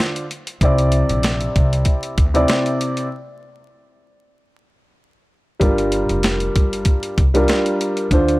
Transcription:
Already playing: D3 D4 F4 C5
0.00 snare
0.16 closed hi-hat
0.31 closed hi-hat
0.47 closed hi-hat
0.61 C2 C3 C4 E4 D5, kick, closed hi-hat
0.78 closed hi-hat
0.92 closed hi-hat
1.09 A#1, closed hi-hat
1.23 snare, closed hi-hat
1.41 closed hi-hat
1.56 C2, kick, closed hi-hat
1.73 closed hi-hat
1.85 kick, closed hi-hat
2.03 closed hi-hat
2.18 D2, kick, closed hi-hat
2.34 C3 C4 E4 D5, closed hi-hat
2.48 snare, closed hi-hat
2.66 closed hi-hat
2.81 closed hi-hat
2.97 closed hi-hat
5.59 G1 G3 D4 F4 A#4, kick, closed hi-hat
5.78 closed hi-hat
5.92 closed hi-hat
6.09 F1, closed hi-hat
6.23 snare, closed hi-hat
6.40 closed hi-hat
6.56 G1, kick, closed hi-hat
6.73 closed hi-hat
6.85 kick, closed hi-hat
7.03 closed hi-hat
7.18 C2, kick, closed hi-hat
7.34 G3 D4 F4 A#4, closed hi-hat
7.48 snare, closed hi-hat
7.66 closed hi-hat
7.81 closed hi-hat
7.97 closed hi-hat
8.11 D2 D3 D4 F4 C5, kick, closed hi-hat
8.29 closed hi-hat

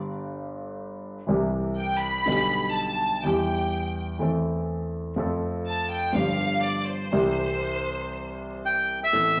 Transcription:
Already playing: G1 G2 D3 G3 B3 G4
1.27 C2 C3 E3 G3 C4 G4
1.77 G5
2.00 B5
2.26 B1 B2 D3 G3 B3
2.30 G4
2.72 A5
3.21 E3 G3 G5
3.26 E2 E3 B3 G4
4.19 E2 E3 A3 C4 A4
5.16 F2 F3 A3 C4 A4
5.68 A5
5.91 G5
6.13 G1 G2 F3 B3 D4 F5
6.17 G4
6.63 D5
6.88 C5
7.11 C2 C3 E3 G3 C4 G4
8.66 G5
9.04 E5
9.12 A1 A2 E3 B3 C4 A4
9.37 E3

